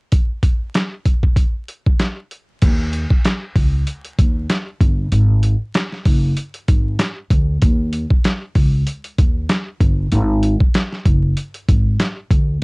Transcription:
0.12 kick, closed hi-hat
0.43 kick, closed hi-hat
0.74 snare, closed hi-hat
1.05 kick, closed hi-hat
1.23 kick
1.36 kick, closed hi-hat
1.68 closed hi-hat
1.86 kick
1.99 snare, closed hi-hat
2.31 closed hi-hat
2.62 upright bass D#2, kick, closed hi-hat, crash
2.93 closed hi-hat
3.10 kick
3.25 snare, closed hi-hat
3.56 upright bass C#2, kick, open hi-hat
3.87 closed hi-hat
4.05 closed hi-hat
4.19 upright bass D#2, kick, closed hi-hat
4.50 snare, closed hi-hat
4.81 upright bass G1, kick, closed hi-hat
5.12 upright bass G#1, closed hi-hat
5.43 closed hi-hat
5.74 snare, closed hi-hat
5.92 snare
6.05 upright bass F#1, kick, open hi-hat
6.37 closed hi-hat
6.54 closed hi-hat
6.68 upright bass G#1, kick, closed hi-hat
6.99 snare, closed hi-hat
7.30 upright bass D2, kick, closed hi-hat
7.62 upright bass D#2, kick, closed hi-hat
7.93 closed hi-hat
8.10 kick
8.24 snare, closed hi-hat
8.55 upright bass C#2, kick, open hi-hat
8.87 closed hi-hat
9.04 closed hi-hat
9.18 upright bass D#2, kick, closed hi-hat
9.49 snare, closed hi-hat
9.80 upright bass G1, kick, closed hi-hat
10.12 upright bass G#1, closed hi-hat
10.43 closed hi-hat
10.60 kick
10.74 snare, closed hi-hat
10.92 snare
11.05 upright bass F#1, kick, closed hi-hat
11.37 closed hi-hat
11.54 closed hi-hat
11.68 upright bass G#1, kick, closed hi-hat
12.00 snare, closed hi-hat
12.30 upright bass D2, kick, closed hi-hat

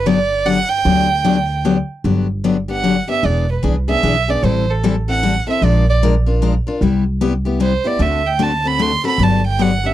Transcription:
Already playing: upright bass G1
0.06 steel-string acoustic guitar D3 F#3 B3 D4 G4, violin D5
0.46 steel-string acoustic guitar D3 F#3 B3 D4 G4, violin F#5
0.69 violin G5
0.85 upright bass D2, steel-string acoustic guitar D3 F#3 B3 D4 G4
1.24 steel-string acoustic guitar D3 F#3 B3 D4 G4
1.65 steel-string acoustic guitar D3 F#3 B3 D4 G4
2.04 upright bass G1, steel-string acoustic guitar D3 F#3 B3 D4 G4
2.44 steel-string acoustic guitar D3 F#3 B3 D4 G4
2.68 steel-string acoustic guitar B3 D4 G4, violin F#5
2.83 steel-string acoustic guitar D3 F#3 B3 D4 G4
3.08 steel-string acoustic guitar B3 D4 G4, violin E5
3.23 upright bass E1, steel-string acoustic guitar E3 B3 D4 G#4, violin D5
3.51 violin B4
3.63 upright bass C2, steel-string acoustic guitar E3 B3 D4 G#4
3.88 steel-string acoustic guitar B3 D4 G#4, violin E5
4.03 upright bass B1, steel-string acoustic guitar E3 B3 D4 G#4
4.28 steel-string acoustic guitar B3 D4 G#4, violin D5
4.43 upright bass A1, steel-string acoustic guitar E3 G3 C4 E4 A4, violin C5
4.70 violin A4
4.83 steel-string acoustic guitar E3 G3 C4 E4 A4
5.08 steel-string acoustic guitar C4 E4 A4, violin F#5
5.23 steel-string acoustic guitar E3 G3 C4 E4 A4
5.47 steel-string acoustic guitar C4 E4 A4, violin E5
5.62 upright bass A#1, steel-string acoustic guitar F3 G#3 D4 F4 A#4, violin D5
5.90 violin D5
6.03 steel-string acoustic guitar F3 G#3 D4 F4 A#4
6.26 steel-string acoustic guitar D4 F4 A#4
6.42 steel-string acoustic guitar F3 G#3 D4 F4 A#4
6.67 steel-string acoustic guitar D4 F4 A#4
6.81 upright bass C2, steel-string acoustic guitar C3 G3 B3 E4 G4
7.21 steel-string acoustic guitar C3 G3 B3 E4 G4
7.45 steel-string acoustic guitar B3 E4 G4
7.60 steel-string acoustic guitar C3 G3 B3 E4 G4, violin C5
7.84 steel-string acoustic guitar B3 E4 G4, violin D5
7.99 upright bass D2, steel-string acoustic guitar D3 A3 C4 F#4 A4, violin E5
8.27 violin G5
8.39 steel-string acoustic guitar D3 A3 C4 F#4 A4, violin A5
8.64 steel-string acoustic guitar C4 F#4 A4, violin B5
8.79 steel-string acoustic guitar D3 A3 C4 F#4 A4, violin C6
9.04 steel-string acoustic guitar C4 F#4 A4, violin B5
9.18 upright bass G1, steel-string acoustic guitar D3 F#3 B3 D4 G4
9.23 violin A5
9.47 violin G5
9.59 steel-string acoustic guitar D3 F#3 B3 D4 G4, violin F#5
9.84 steel-string acoustic guitar B3 D4 G4, violin E5

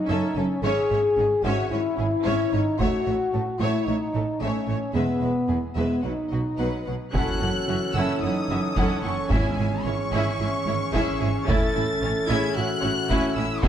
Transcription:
Already playing: french horn section D#4
0.09 double bass section F#1, cello section F#2, viola section C#4, violin section A4 E5
0.35 double bass section F#1, cello section F#2, viola section C#4, french horn section C#4, violin section A4 E5
0.63 double bass section G#1, cello section G#2, viola section C#4, french horn section G#4, violin section C#5 E5
0.91 double bass section G#1, cello section G#2, viola section C#4, violin section C#5 E5
1.17 double bass section G#1, cello section G#2, viola section C#4, violin section G#4 C#5
1.43 double bass section G#1, cello section G#2, viola section C#4, french horn section F#4, violin section C#5 E5
1.71 double bass section G#1, cello section G#2, viola section C#4, french horn section E4, violin section C#5 E5
1.97 double bass section G#1, cello section G#2, viola section C#4, violin section G#4 C#5
2.25 double bass section G#1, cello section G#2, viola section C#4, violin section C#5 E5
2.52 double bass section G#1, cello section G#2, viola section C#4, french horn section D#4, violin section C#5 E5
2.79 double bass section A1, cello section A2, viola section A3, french horn section F#4, violin section C#5 E5, taiko
3.06 double bass section A1, cello section A2, viola section A3, violin section C#5 E5
3.33 double bass section A1, cello section A2, viola section A3, violin section A4 C#5
3.59 double bass section A1, cello section A2, viola section A3, french horn section E4, violin section C#5 E5
3.86 double bass section A1, cello section A2, viola section A3, french horn section D#4, violin section C#5 E5
4.13 double bass section A1, cello section A2, viola section A3, violin section A4 C#5
4.40 double bass section A1, cello section A2, viola section A3, french horn section C#4, violin section C#5 E5
4.67 double bass section A1, cello section A2, viola section A3, violin section C#5 E5
4.94 double bass section E1, cello section E2, viola section G#3, french horn section B3, violin section B4 E5
5.21 double bass section E1, cello section E2, viola section G#3, violin section B4 E5
5.48 double bass section E1, cello section E2, viola section G#3, violin section G#4 B4
5.75 double bass section E1, cello section E2, viola section G#3, french horn section B3, violin section B4 E5
6.02 double bass section B1, cello section B2, viola section F#3, french horn section D#4, violin section B4 F#5
6.31 double bass section B1, cello section B2, viola section F#3, violin section F#4 D#5
6.58 double bass section B1, cello section B2, viola section F#3, violin section B4 F#5
6.86 double bass section B1, cello section B2, viola section F#3, violin section B4 F#5
7.14 double bass section F#1, cello section F#2, pipe organ E3 C#4 A4 C#5, viola section C#4 E4, french horn section F#4, violin section A4 F#5 F#6, taiko
7.40 double bass section F#1, cello section F#2, viola section C#4 E4, violin section A4 F#5
7.68 double bass section F#1, cello section F#2, viola section C#4 E4, violin section F#4 E5
7.95 double bass section F#1, cello section F#2, viola section C#4 E4, french horn section E4, violin section A4 F#5 E6
8.22 double bass section F#1, cello section F#2, viola section C#4 E4, french horn section D#4, violin section A4 F#5 D#6
8.49 double bass section F#1, cello section F#2, viola section C#4 E4, violin section F#4 E5
8.76 double bass section F#1, cello section F#2, viola section C#4 E4, violin section A4 F#5, taiko
9.03 double bass section F#1, cello section F#2, french horn section C#4, viola section C#4 E4, violin section A4 F#5 C#6
9.29 double bass section G#1, timpani G#2, cello section G#2, french horn section G#3, viola section C#4 E4, pipe organ G#4, violin section G#4 E5 G#5, taiko
9.57 double bass section G#1, cello section G#2, viola section C#4 E4, violin section G#4 E5
9.84 double bass section G#1, cello section G#2, french horn section C#4, viola section C#4 E4, violin section E4 C#5 C#6
10.12 double bass section G#1, cello section G#2, viola section C#4 E4, violin section G#4 E5
10.39 double bass section G#1, cello section G#2, viola section C#4 E4, violin section G#4 E5
10.66 double bass section G#1, cello section G#2, viola section C#4 E4, violin section E4 C#5
10.93 double bass section G#1, cello section G#2, viola section C#4 E4, violin section G#4 E5, taiko
11.20 double bass section G#1, cello section G#2, viola section C#4 E4, violin section G#4 E5
11.47 double bass section A1, cello section A2, viola section C#4 E4, violin section E4 E5 A6, french horn section A4, pipe organ A4 E5, taiko
11.74 double bass section A1, cello section A2, viola section C#4 E4, violin section E4 E5
12.01 double bass section A1, cello section A2, viola section C#4 E4, violin section C#4 C#5
12.28 double bass section A1, cello section A2, viola section C#4 E4, violin section E4 E5 G#6, french horn section G#4
12.55 double bass section A1, cello section A2, viola section C#4 E4, violin section E4 E5 F#6, french horn section F#4
12.81 double bass section A1, cello section A2, violin section C#4 C#5, viola section C#4 E4
13.09 double bass section A1, cello section A2, viola section C#4 E4, violin section E4 E5, taiko
13.36 double bass section A1, cello section A2, viola section C#4 E4, violin section E4 E5 E6, french horn section E4
13.62 double bass section E1, cello section E2, pipe organ E3 B3 G#4, viola section B3 E4, violin section G#4 E5 B5, taiko

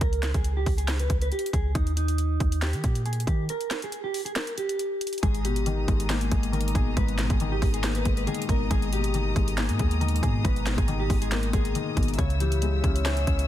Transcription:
0.01 808-style bass C#2, clean electric guitar A#4, kick, closed hi-hat
0.13 closed hi-hat
0.23 snare, clap, closed hi-hat
0.34 808-style bass C#2, clean electric guitar G#4, kick, closed hi-hat
0.44 closed hi-hat
0.57 clean electric guitar G4
0.66 808-style bass C#2, kick, open hi-hat
0.78 clean electric guitar G#4, closed hi-hat
0.88 snare, clap, closed hi-hat
0.99 clean electric guitar B4, closed hi-hat
1.10 808-style bass C#2, kick, closed hi-hat
1.22 clean electric guitar B4, closed hi-hat
1.32 clean electric guitar G4, closed hi-hat
1.39 closed hi-hat
1.46 closed hi-hat
1.53 808-style bass C#2, clean electric guitar G#4, kick, closed hi-hat
1.75 808-style bass D#2, clean electric guitar D#4, kick, closed hi-hat
1.87 closed hi-hat
1.97 clean electric guitar D#4, closed hi-hat
2.08 closed hi-hat
2.18 closed hi-hat
2.40 808-style bass D#2, kick, closed hi-hat
2.52 closed hi-hat
2.62 clean electric guitar G4, snare, clap, closed hi-hat
2.73 808-style bass D#3, closed hi-hat
2.84 808-style bass A#2, kick, closed hi-hat
2.95 closed hi-hat
3.06 clean electric guitar G#4, closed hi-hat
3.13 closed hi-hat
3.20 closed hi-hat
3.27 808-style bass D#3, clean electric guitar G4, kick, closed hi-hat
3.49 clean electric guitar A#4, closed hi-hat
3.61 closed hi-hat
3.71 snare, clap, closed hi-hat
3.82 clean electric guitar G#4, closed hi-hat
3.92 closed hi-hat
4.04 clean electric guitar G4
4.14 open hi-hat
4.25 clean electric guitar G#4, closed hi-hat
4.35 clean electric guitar A#4, snare, clap, closed hi-hat
4.47 closed hi-hat
4.58 clean electric guitar G4, closed hi-hat
4.69 closed hi-hat
4.79 closed hi-hat
5.01 closed hi-hat
5.07 closed hi-hat
5.13 closed hi-hat
5.18 closed hi-hat
5.23 808-style bass G#1, felt piano G#2, clean electric guitar G#4, string section D#5 A#5 D#6, kick, closed hi-hat
5.34 closed hi-hat
5.45 felt piano B2, clean electric guitar G4, closed hi-hat
5.56 closed hi-hat
5.66 felt piano D#3, closed hi-hat
5.88 808-style bass G#1, felt piano G#3, kick, closed hi-hat
6.00 closed hi-hat
6.10 felt piano A#3, clean electric guitar G#4, snare, clap, closed hi-hat
6.21 closed hi-hat
6.31 808-style bass G#1, felt piano G#3, kick, closed hi-hat
6.43 closed hi-hat
6.52 felt piano D#3, clean electric guitar A#4, closed hi-hat
6.61 closed hi-hat
6.68 closed hi-hat
6.75 808-style bass G#1, felt piano B2, clean electric guitar G#4, kick, closed hi-hat
6.97 808-style bass G#1, felt piano G#2, clean electric guitar B4, kick, closed hi-hat
7.08 closed hi-hat
7.18 felt piano B2, snare, clap, closed hi-hat
7.30 808-style bass G#1, clean electric guitar G#4, kick, closed hi-hat
7.40 felt piano D#3, closed hi-hat
7.52 clean electric guitar G4
7.62 808-style bass G#1, felt piano G#3, kick, open hi-hat
7.74 clean electric guitar G#4, closed hi-hat
7.84 felt piano A#3, snare, clap, closed hi-hat
7.95 clean electric guitar B4, closed hi-hat
8.05 808-style bass G#1, felt piano G#3, kick, closed hi-hat
8.17 clean electric guitar B4, closed hi-hat
8.27 felt piano D#3, clean electric guitar G#4, closed hi-hat
8.35 closed hi-hat
8.42 closed hi-hat
8.49 808-style bass G#1, felt piano B2, clean electric guitar A#4, kick, closed hi-hat
8.70 808-style bass G#1, felt piano G#2, clean electric guitar G#4, kick, closed hi-hat
8.82 closed hi-hat
8.93 felt piano B2, clean electric guitar G4, closed hi-hat
9.04 closed hi-hat
9.14 felt piano D#3, closed hi-hat
9.36 808-style bass G#1, felt piano G#3, kick, closed hi-hat
9.48 closed hi-hat
9.58 felt piano A#3, clean electric guitar G#4, snare, clap, closed hi-hat
9.69 808-style bass G#2, closed hi-hat
9.79 808-style bass D#2, felt piano G#3, kick, closed hi-hat
9.91 closed hi-hat
10.01 felt piano D#3, clean electric guitar A#4, closed hi-hat
10.08 closed hi-hat
10.16 closed hi-hat
10.23 808-style bass G#2, felt piano B2, clean electric guitar G#4, kick, closed hi-hat
10.44 808-style bass G#1, felt piano G#2, clean electric guitar B4, kick, closed hi-hat
10.56 closed hi-hat
10.66 felt piano B2, snare, clap, closed hi-hat
10.77 808-style bass G#1, clean electric guitar G#4, kick, closed hi-hat
10.88 felt piano D#3, closed hi-hat
10.99 clean electric guitar G4
11.10 808-style bass G#1, felt piano G#3, kick, open hi-hat
11.22 clean electric guitar G#4, closed hi-hat
11.32 felt piano A#3, clean electric guitar A#4, snare, clap, closed hi-hat
11.43 closed hi-hat
11.53 808-style bass G#1, felt piano G#3, clean electric guitar G#4, kick, closed hi-hat
11.65 closed hi-hat
11.75 felt piano D#3, closed hi-hat
11.97 808-style bass G#1, felt piano B2, kick, closed hi-hat
12.03 closed hi-hat
12.08 closed hi-hat
12.14 closed hi-hat
12.18 808-style bass C#2, felt piano C#3, clean electric guitar C#5, string section C#5 E5 E6, kick, closed hi-hat
12.30 closed hi-hat
12.40 felt piano E3, clean electric guitar G4, closed hi-hat
12.52 closed hi-hat
12.62 felt piano G#3, closed hi-hat
12.84 808-style bass C#2, felt piano C#4, kick, closed hi-hat
12.96 closed hi-hat
13.05 clean electric guitar G#4, felt piano C#5, snare, clap, closed hi-hat
13.17 closed hi-hat
13.27 808-style bass C#2, felt piano C#4, kick, closed hi-hat
13.39 closed hi-hat

